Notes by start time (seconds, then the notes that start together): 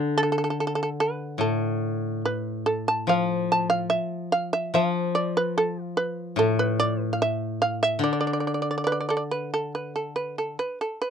Already playing: D3 D5
0.18 A4
0.23 A4
0.32 A4
0.38 A4
0.44 A4
0.50 A4
0.60 A4
0.67 A4
0.75 A4
0.83 A4
1.00 B4
1.38 A2 A4
2.25 B4
2.66 A4
2.88 A5
3.07 F3 F5
3.52 A5
3.70 F5
3.90 E5
4.32 F5
4.53 E5
4.74 F3 F5
5.15 D5
5.37 B4
5.58 A4
5.84 F4
5.97 B4
6.36 A2 A4
6.59 B4
6.80 D5
7.01 B4
7.13 F5
7.22 E5
7.62 F5
7.83 E5
7.99 D3
8.04 D5
8.13 D5
8.21 D5
8.27 D5
8.33 D5
8.40 D5
8.47 D5
8.54 D5
8.62 D5
8.71 D5
8.78 D5
8.84 B4 D5
8.92 D5
9.00 D5
9.09 A4 D5
9.17 D5
9.31 B4
9.54 A4
9.75 B4
9.96 A4
10.16 B4
10.38 A4
10.59 B4
10.81 A4
11.02 B4